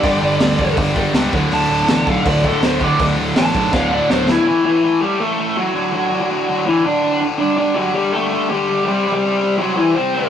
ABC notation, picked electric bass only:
X:1
M:4/4
L:1/8
Q:1/4=163
K:D
V:1 name="Picked electric bass" clef=bass
G,,, G,,, D,, E,,, G,,,2 C,, D,,, | D,,, D,,, A,,, B,,, D,,,2 D,,,2 | D,,, D,,, A,,, B,,, D,,,2 D,,,2 | z8 |
z8 | z8 | z8 |]